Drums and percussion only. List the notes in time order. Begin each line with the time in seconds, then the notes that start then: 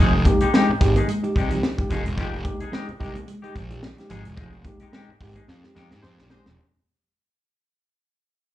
0.25 kick, closed hi-hat
0.40 closed hi-hat
0.54 snare
0.81 kick, closed hi-hat
0.96 closed hi-hat
1.09 closed hi-hat
1.24 closed hi-hat
1.36 kick, closed hi-hat
1.50 closed hi-hat
1.63 snare
1.78 kick, closed hi-hat
1.90 kick, closed hi-hat
2.06 closed hi-hat
2.17 kick, closed hi-hat
2.33 closed hi-hat
2.45 kick, closed hi-hat
2.60 closed hi-hat
2.73 snare
2.88 closed hi-hat
3.00 kick, closed hi-hat
3.15 closed hi-hat
3.28 closed hi-hat
3.44 closed hi-hat
3.56 kick, closed hi-hat
3.70 closed hi-hat
3.83 snare
3.98 snare, closed hi-hat
4.10 closed hi-hat
4.25 closed hi-hat
4.37 kick, closed hi-hat
4.53 closed hi-hat
4.65 kick, closed hi-hat
4.79 closed hi-hat
4.93 snare
5.20 kick, open hi-hat
5.35 closed hi-hat
5.48 snare
5.64 snare
5.76 snare
5.91 snare
6.03 snare
6.19 snare
6.30 snare
6.46 snare